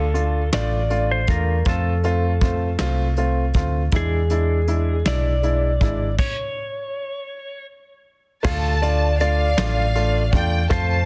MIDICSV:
0, 0, Header, 1, 6, 480
1, 0, Start_track
1, 0, Key_signature, -1, "minor"
1, 0, Tempo, 753769
1, 1058, Time_signature, 6, 3, 24, 8
1, 7039, End_track
2, 0, Start_track
2, 0, Title_t, "Violin section"
2, 0, Program_c, 0, 48
2, 5378, Note_on_c, 0, 81, 94
2, 5832, Note_off_c, 0, 81, 0
2, 5860, Note_on_c, 0, 77, 92
2, 6578, Note_off_c, 0, 77, 0
2, 6583, Note_on_c, 0, 79, 91
2, 6803, Note_off_c, 0, 79, 0
2, 6812, Note_on_c, 0, 81, 101
2, 7039, Note_off_c, 0, 81, 0
2, 7039, End_track
3, 0, Start_track
3, 0, Title_t, "Electric slide guitar"
3, 0, Program_c, 1, 29
3, 0, Note_on_c, 1, 69, 71
3, 314, Note_off_c, 1, 69, 0
3, 344, Note_on_c, 1, 74, 97
3, 710, Note_on_c, 1, 72, 87
3, 712, Note_off_c, 1, 74, 0
3, 816, Note_off_c, 1, 72, 0
3, 827, Note_on_c, 1, 70, 77
3, 1063, Note_off_c, 1, 70, 0
3, 1076, Note_on_c, 1, 69, 67
3, 1762, Note_off_c, 1, 69, 0
3, 2523, Note_on_c, 1, 68, 83
3, 3232, Note_on_c, 1, 74, 103
3, 3252, Note_off_c, 1, 68, 0
3, 3920, Note_off_c, 1, 74, 0
3, 3944, Note_on_c, 1, 73, 81
3, 4875, Note_off_c, 1, 73, 0
3, 5378, Note_on_c, 1, 69, 82
3, 5619, Note_on_c, 1, 74, 94
3, 5625, Note_off_c, 1, 69, 0
3, 5857, Note_off_c, 1, 74, 0
3, 5865, Note_on_c, 1, 74, 114
3, 6795, Note_off_c, 1, 74, 0
3, 6827, Note_on_c, 1, 72, 98
3, 7039, Note_off_c, 1, 72, 0
3, 7039, End_track
4, 0, Start_track
4, 0, Title_t, "Upright piano"
4, 0, Program_c, 2, 0
4, 90, Note_on_c, 2, 62, 58
4, 90, Note_on_c, 2, 65, 67
4, 91, Note_on_c, 2, 57, 57
4, 259, Note_off_c, 2, 62, 0
4, 259, Note_off_c, 2, 65, 0
4, 260, Note_off_c, 2, 57, 0
4, 336, Note_on_c, 2, 62, 68
4, 338, Note_on_c, 2, 57, 85
4, 342, Note_on_c, 2, 65, 85
4, 502, Note_off_c, 2, 62, 0
4, 503, Note_off_c, 2, 57, 0
4, 505, Note_off_c, 2, 65, 0
4, 574, Note_on_c, 2, 57, 67
4, 578, Note_on_c, 2, 65, 78
4, 580, Note_on_c, 2, 62, 60
4, 741, Note_off_c, 2, 57, 0
4, 743, Note_off_c, 2, 65, 0
4, 744, Note_off_c, 2, 62, 0
4, 815, Note_on_c, 2, 57, 63
4, 817, Note_on_c, 2, 62, 59
4, 818, Note_on_c, 2, 65, 69
4, 982, Note_off_c, 2, 57, 0
4, 983, Note_off_c, 2, 62, 0
4, 983, Note_off_c, 2, 65, 0
4, 1055, Note_on_c, 2, 57, 75
4, 1058, Note_on_c, 2, 60, 70
4, 1060, Note_on_c, 2, 65, 85
4, 1222, Note_off_c, 2, 57, 0
4, 1224, Note_off_c, 2, 60, 0
4, 1225, Note_off_c, 2, 65, 0
4, 1298, Note_on_c, 2, 57, 72
4, 1301, Note_on_c, 2, 60, 66
4, 1303, Note_on_c, 2, 65, 85
4, 1463, Note_off_c, 2, 57, 0
4, 1465, Note_off_c, 2, 60, 0
4, 1466, Note_off_c, 2, 65, 0
4, 1542, Note_on_c, 2, 57, 67
4, 1543, Note_on_c, 2, 60, 63
4, 1544, Note_on_c, 2, 65, 65
4, 1705, Note_off_c, 2, 57, 0
4, 1706, Note_off_c, 2, 60, 0
4, 1706, Note_off_c, 2, 65, 0
4, 1779, Note_on_c, 2, 57, 80
4, 1782, Note_on_c, 2, 60, 71
4, 1786, Note_on_c, 2, 65, 96
4, 1944, Note_off_c, 2, 57, 0
4, 1945, Note_off_c, 2, 60, 0
4, 1947, Note_off_c, 2, 65, 0
4, 2022, Note_on_c, 2, 57, 67
4, 2023, Note_on_c, 2, 60, 71
4, 2025, Note_on_c, 2, 65, 70
4, 2186, Note_off_c, 2, 57, 0
4, 2186, Note_off_c, 2, 60, 0
4, 2187, Note_off_c, 2, 65, 0
4, 2262, Note_on_c, 2, 57, 58
4, 2265, Note_on_c, 2, 60, 58
4, 2268, Note_on_c, 2, 65, 73
4, 2426, Note_off_c, 2, 57, 0
4, 2427, Note_off_c, 2, 60, 0
4, 2428, Note_off_c, 2, 65, 0
4, 2501, Note_on_c, 2, 56, 76
4, 2501, Note_on_c, 2, 62, 72
4, 2502, Note_on_c, 2, 64, 83
4, 2665, Note_off_c, 2, 56, 0
4, 2665, Note_off_c, 2, 62, 0
4, 2666, Note_off_c, 2, 64, 0
4, 2740, Note_on_c, 2, 62, 70
4, 2742, Note_on_c, 2, 56, 75
4, 2746, Note_on_c, 2, 64, 73
4, 2904, Note_off_c, 2, 62, 0
4, 2905, Note_off_c, 2, 56, 0
4, 2908, Note_off_c, 2, 64, 0
4, 2979, Note_on_c, 2, 56, 66
4, 2979, Note_on_c, 2, 62, 57
4, 2982, Note_on_c, 2, 64, 71
4, 3144, Note_off_c, 2, 56, 0
4, 3144, Note_off_c, 2, 62, 0
4, 3145, Note_off_c, 2, 64, 0
4, 3218, Note_on_c, 2, 62, 78
4, 3220, Note_on_c, 2, 56, 82
4, 3226, Note_on_c, 2, 64, 86
4, 3383, Note_off_c, 2, 62, 0
4, 3384, Note_off_c, 2, 56, 0
4, 3387, Note_off_c, 2, 64, 0
4, 3455, Note_on_c, 2, 56, 66
4, 3461, Note_on_c, 2, 62, 66
4, 3462, Note_on_c, 2, 64, 76
4, 3622, Note_off_c, 2, 56, 0
4, 3625, Note_off_c, 2, 62, 0
4, 3625, Note_off_c, 2, 64, 0
4, 3696, Note_on_c, 2, 56, 65
4, 3704, Note_on_c, 2, 62, 63
4, 3706, Note_on_c, 2, 64, 69
4, 3863, Note_off_c, 2, 56, 0
4, 3867, Note_off_c, 2, 62, 0
4, 3867, Note_off_c, 2, 64, 0
4, 5368, Note_on_c, 2, 57, 94
4, 5372, Note_on_c, 2, 62, 72
4, 5378, Note_on_c, 2, 65, 98
4, 5538, Note_off_c, 2, 57, 0
4, 5540, Note_off_c, 2, 62, 0
4, 5543, Note_off_c, 2, 65, 0
4, 5615, Note_on_c, 2, 57, 81
4, 5619, Note_on_c, 2, 62, 67
4, 5623, Note_on_c, 2, 65, 83
4, 5781, Note_off_c, 2, 57, 0
4, 5783, Note_off_c, 2, 62, 0
4, 5785, Note_off_c, 2, 65, 0
4, 5860, Note_on_c, 2, 57, 66
4, 5862, Note_on_c, 2, 62, 62
4, 5866, Note_on_c, 2, 65, 77
4, 6024, Note_off_c, 2, 57, 0
4, 6025, Note_off_c, 2, 62, 0
4, 6027, Note_off_c, 2, 65, 0
4, 6095, Note_on_c, 2, 57, 82
4, 6096, Note_on_c, 2, 62, 82
4, 6098, Note_on_c, 2, 65, 95
4, 6261, Note_off_c, 2, 57, 0
4, 6262, Note_off_c, 2, 62, 0
4, 6263, Note_off_c, 2, 65, 0
4, 6338, Note_on_c, 2, 62, 70
4, 6339, Note_on_c, 2, 57, 78
4, 6339, Note_on_c, 2, 65, 86
4, 6503, Note_off_c, 2, 57, 0
4, 6503, Note_off_c, 2, 62, 0
4, 6503, Note_off_c, 2, 65, 0
4, 6580, Note_on_c, 2, 57, 68
4, 6584, Note_on_c, 2, 65, 76
4, 6586, Note_on_c, 2, 62, 71
4, 6743, Note_off_c, 2, 57, 0
4, 6745, Note_off_c, 2, 65, 0
4, 6746, Note_off_c, 2, 62, 0
4, 6810, Note_on_c, 2, 57, 92
4, 6814, Note_on_c, 2, 60, 84
4, 6814, Note_on_c, 2, 65, 100
4, 6978, Note_off_c, 2, 57, 0
4, 6981, Note_off_c, 2, 60, 0
4, 6981, Note_off_c, 2, 65, 0
4, 7039, End_track
5, 0, Start_track
5, 0, Title_t, "Fingered electric bass"
5, 0, Program_c, 3, 33
5, 0, Note_on_c, 3, 38, 79
5, 311, Note_off_c, 3, 38, 0
5, 340, Note_on_c, 3, 33, 78
5, 793, Note_off_c, 3, 33, 0
5, 816, Note_on_c, 3, 40, 82
5, 1043, Note_off_c, 3, 40, 0
5, 1059, Note_on_c, 3, 41, 84
5, 1753, Note_off_c, 3, 41, 0
5, 1782, Note_on_c, 3, 36, 86
5, 2235, Note_off_c, 3, 36, 0
5, 2263, Note_on_c, 3, 38, 81
5, 2486, Note_off_c, 3, 38, 0
5, 2501, Note_on_c, 3, 40, 87
5, 3194, Note_off_c, 3, 40, 0
5, 3223, Note_on_c, 3, 35, 93
5, 3675, Note_off_c, 3, 35, 0
5, 3700, Note_on_c, 3, 32, 89
5, 3925, Note_off_c, 3, 32, 0
5, 5379, Note_on_c, 3, 38, 90
5, 6072, Note_off_c, 3, 38, 0
5, 6102, Note_on_c, 3, 33, 99
5, 6554, Note_off_c, 3, 33, 0
5, 6581, Note_on_c, 3, 40, 85
5, 6804, Note_off_c, 3, 40, 0
5, 6819, Note_on_c, 3, 41, 100
5, 7039, Note_off_c, 3, 41, 0
5, 7039, End_track
6, 0, Start_track
6, 0, Title_t, "Drums"
6, 95, Note_on_c, 9, 42, 51
6, 159, Note_off_c, 9, 42, 0
6, 335, Note_on_c, 9, 38, 98
6, 335, Note_on_c, 9, 42, 67
6, 399, Note_off_c, 9, 38, 0
6, 399, Note_off_c, 9, 42, 0
6, 575, Note_on_c, 9, 42, 43
6, 638, Note_off_c, 9, 42, 0
6, 809, Note_on_c, 9, 42, 45
6, 816, Note_on_c, 9, 36, 69
6, 873, Note_off_c, 9, 42, 0
6, 879, Note_off_c, 9, 36, 0
6, 1052, Note_on_c, 9, 42, 73
6, 1057, Note_on_c, 9, 36, 93
6, 1115, Note_off_c, 9, 42, 0
6, 1121, Note_off_c, 9, 36, 0
6, 1297, Note_on_c, 9, 42, 41
6, 1360, Note_off_c, 9, 42, 0
6, 1535, Note_on_c, 9, 42, 47
6, 1538, Note_on_c, 9, 36, 74
6, 1598, Note_off_c, 9, 42, 0
6, 1601, Note_off_c, 9, 36, 0
6, 1775, Note_on_c, 9, 38, 99
6, 1775, Note_on_c, 9, 42, 77
6, 1838, Note_off_c, 9, 38, 0
6, 1838, Note_off_c, 9, 42, 0
6, 2015, Note_on_c, 9, 42, 40
6, 2079, Note_off_c, 9, 42, 0
6, 2251, Note_on_c, 9, 42, 45
6, 2258, Note_on_c, 9, 36, 77
6, 2315, Note_off_c, 9, 42, 0
6, 2322, Note_off_c, 9, 36, 0
6, 2494, Note_on_c, 9, 42, 80
6, 2499, Note_on_c, 9, 36, 87
6, 2557, Note_off_c, 9, 42, 0
6, 2563, Note_off_c, 9, 36, 0
6, 2737, Note_on_c, 9, 42, 47
6, 2801, Note_off_c, 9, 42, 0
6, 2978, Note_on_c, 9, 42, 47
6, 3041, Note_off_c, 9, 42, 0
6, 3220, Note_on_c, 9, 38, 94
6, 3220, Note_on_c, 9, 42, 76
6, 3284, Note_off_c, 9, 38, 0
6, 3284, Note_off_c, 9, 42, 0
6, 3459, Note_on_c, 9, 42, 45
6, 3522, Note_off_c, 9, 42, 0
6, 3698, Note_on_c, 9, 42, 55
6, 3700, Note_on_c, 9, 36, 78
6, 3762, Note_off_c, 9, 42, 0
6, 3763, Note_off_c, 9, 36, 0
6, 3939, Note_on_c, 9, 36, 90
6, 3940, Note_on_c, 9, 49, 74
6, 4003, Note_off_c, 9, 36, 0
6, 4003, Note_off_c, 9, 49, 0
6, 5377, Note_on_c, 9, 49, 87
6, 5378, Note_on_c, 9, 36, 101
6, 5441, Note_off_c, 9, 49, 0
6, 5442, Note_off_c, 9, 36, 0
6, 5619, Note_on_c, 9, 42, 52
6, 5683, Note_off_c, 9, 42, 0
6, 5860, Note_on_c, 9, 42, 52
6, 5923, Note_off_c, 9, 42, 0
6, 6099, Note_on_c, 9, 38, 115
6, 6099, Note_on_c, 9, 42, 90
6, 6163, Note_off_c, 9, 38, 0
6, 6163, Note_off_c, 9, 42, 0
6, 6339, Note_on_c, 9, 42, 51
6, 6402, Note_off_c, 9, 42, 0
6, 6575, Note_on_c, 9, 42, 54
6, 6577, Note_on_c, 9, 36, 86
6, 6639, Note_off_c, 9, 42, 0
6, 6641, Note_off_c, 9, 36, 0
6, 6818, Note_on_c, 9, 36, 102
6, 6818, Note_on_c, 9, 42, 79
6, 6881, Note_off_c, 9, 42, 0
6, 6882, Note_off_c, 9, 36, 0
6, 7039, End_track
0, 0, End_of_file